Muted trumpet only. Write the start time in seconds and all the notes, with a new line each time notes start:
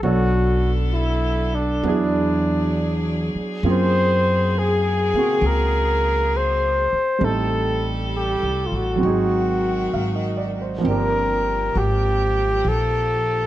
0.03 F#4
0.93 E4
1.55 D4
3.71 C5
4.59 G#4
5.47 A#4
6.37 C5
7.24 A4
8.16 G4
8.66 F4
8.75 F#4
10.90 A#4
11.76 F#4 G4
12.69 A4